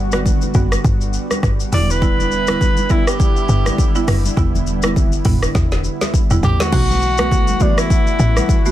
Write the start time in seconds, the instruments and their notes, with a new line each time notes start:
Already playing: log drum bass G1, analog synth pad D3 G3 B3 F#4
0.12 marimba D3 G3 B3 F#4, cross-stick, high conga, shaker
0.26 kick, low conga, shaker
0.42 high conga, shaker
0.54 log drum bass F#1, marimba D3 G3 B3 F#4, kick, high conga, shaker
0.72 cross-stick, shaker
0.84 log drum bass G1, kick, shaker
1.01 shaker
1.13 shaker
1.31 cross-stick, high conga, shaker
1.43 log drum bass G1, kick, cross-stick, shaker
1.60 shaker
1.72 log drum bass E1, marimba D3 G3 B3 E4, analog synth pad B3 E4, tenor saxophone D5, open hi-hat, high conga, low conga, shaker
1.90 tenor saxophone B4, high conga, shaker
2.02 marimba D3 G3 B3 E4, kick, shaker
2.20 high conga, shaker
2.31 shaker
2.47 marimba D3 G3 B3 E4, cross-stick, high conga, shaker
2.61 kick, low conga, shaker
2.77 high conga, shaker
2.89 marimba D3 G3 B3 E4, tenor saxophone E4, kick, high conga, shaker
3.07 tenor saxophone G4, cross-stick, shaker
3.20 kick, shaker
3.36 shaker
3.49 log drum bass G1, shaker
3.66 cross-stick, high conga, shaker
3.78 kick, shaker
3.95 marimba D3 G3 B3 E4, shaker
4.08 log drum bass F#1, cross-stick, open hi-hat, high conga, low conga, shaker
4.25 high conga, shaker
4.37 log drum bass E1, marimba D3 G3 B3 E4, kick, shaker
4.56 high conga, shaker
4.67 shaker
4.82 marimba D3 G3 B3 E4, cross-stick, high conga, shaker
4.96 kick, low conga, shaker
5.12 shaker
5.25 log drum bass E1, marimba D3 G3 B3 E4, kick, mid tom, open hi-hat, high conga, shaker
5.43 cross-stick, shaker
5.55 log drum bass E1, kick, snare, shaker
5.72 snare, shaker
5.84 shaker
6.01 snare, high conga, shaker
6.14 kick, shaker
6.30 log drum bass E1, marimba D3 G3 B3 E4, shaker
6.43 log drum bass A1, tenor saxophone G4, floor tom, low conga, shaker
6.60 tenor saxophone F#4, snare, high conga, shaker
6.72 log drum bass B1, marimba E3 A3 B3 F#4, analog synth pad E3 A3 B3 F#4, kick, crash, shaker
6.91 high conga, shaker
7.02 shaker
7.18 marimba E3 A3 B3 F#4, cross-stick, high conga, shaker
7.32 kick, low conga, shaker
7.48 high conga, shaker
7.60 marimba E3 A3 B3 F#4, tenor saxophone D4, kick, high conga, shaker
7.78 tenor saxophone E4, cross-stick, shaker
7.90 kick, shaker
8.07 shaker
8.19 log drum bass A1, shaker
8.37 cross-stick, high conga, shaker
8.49 kick, shaker
8.66 marimba E3 A3 B3 F#4, shaker